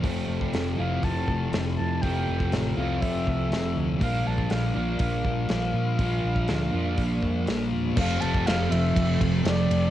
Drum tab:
CC |----------------|----------------|----------------|----------------|
RD |----------------|----------------|----------------|----------------|
HH |o---o---o---o---|o---o---o---o---|o---o---o---o---|o---o---o---o---|
SD |----o-------o---|----o-------o---|----o-------o---|----o-------o---|
BD |o--o----o-o-----|o--o----o-o-----|o--o----o-o-----|o--o----o-o-----|

CC |x---------------|
RD |--x-x-x-x-x-x-x-|
HH |----------------|
SD |----o-------o---|
BD |o--o----o-o-----|